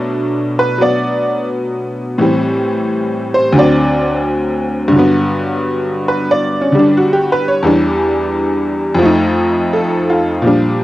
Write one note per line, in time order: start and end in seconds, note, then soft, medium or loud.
0.00 2.19 B2 medium
0.00 0.76 F#3 medium
0.00 2.20 A3 soft
0.00 2.21 D4 medium
0.59 0.80 B4 medium
0.78 2.19 F#3 soft
0.78 2.20 B3 medium
0.82 1.47 D5 medium
2.18 3.55 A2 medium
2.18 3.56 E3 soft
2.18 3.57 G3 soft
2.22 3.56 C4 medium
3.34 3.56 C5 medium
3.53 4.91 D2 medium
3.53 4.91 D3 medium
3.53 4.93 F#3 medium
3.58 4.94 C4 medium
3.58 4.22 D5 medium
4.88 7.63 G2 medium
4.92 6.70 D3 medium
4.92 7.67 F#3 medium
4.99 7.68 B3 medium
6.08 6.29 B4 medium
6.31 6.94 D5 medium
6.61 6.83 C#4 soft
6.72 7.64 D3 soft
6.72 7.64 G3 medium
6.79 7.03 D4 soft
6.97 7.29 F#4 medium
7.13 7.43 G4 medium
7.32 7.53 B4 medium
7.48 7.72 C#5 medium
7.63 9.01 E2 medium
7.63 9.02 E3 medium
7.63 9.03 G3 medium
7.67 9.03 D4 medium
8.95 10.42 F2 medium
8.99 10.42 F3 medium
8.99 10.46 A3 medium
9.06 10.48 D#4 medium
9.73 10.30 A4 medium
10.10 10.60 F4 medium
10.42 10.84 A#2 soft
10.42 10.84 F3 soft
10.46 10.84 G3 soft
10.46 10.84 D4 medium